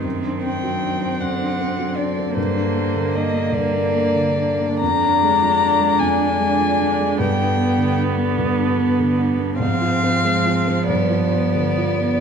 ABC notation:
X:1
M:6/8
L:1/16
Q:3/8=50
K:Gm
V:1 name="Violin"
z2 g4 ^f4 d2 | c4 e2 d6 | [K:Gphr] b6 a6 | g4 z8 |
f6 d6 |]
V:2 name="Viola"
C12 | B,12 | [K:Gphr] D12 | =B,12 |
C6 =B,6 |]
V:3 name="Grand piano"
^F,, D C ^F, D C F,, D C F, D C | G,, D B, D, D B, G,, D B, D, D B, | [K:Gphr] F,, D A, F, D A, F,, D A, F, D A, | G,, D =B, D, D B, G,, D B, D, D B, |
A,, F C A, F C G,, F =B, D, F B, |]
V:4 name="Cello" clef=bass
E,6 D,6- | D,12 | [K:Gphr] D,12- | D,12 |
F,12 |]